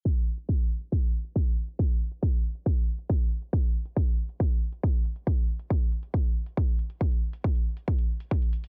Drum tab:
HH |xx-xxx-xxx-xxxxx|xxxxxxxxxx-xxxxx|xx-xxx-xxx-xxxxx|xxxxxxxxxx-xxxxx|
BD |o---o---o---o---|o---o---o---o---|o---o---o---o---|o---o---o---o---|

HH |xx-xxx-xxx-xxxxx|
BD |o---o---o---o---|